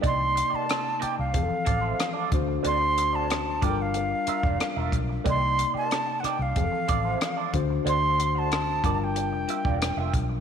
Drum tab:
HH |x-x-x-x-x-x-x-x-|x-x-x-x-x-x-x-x-|x-x-x-x-x-x-x-x-|x-x-x-x-x-x-x-x-|
SD |----r-------r---|----r-------r---|----r-r-----r---|----r-------r---|
BD |o-------o-o---o-|------o----o--o-|o-------o-o---o-|------o----o--o-|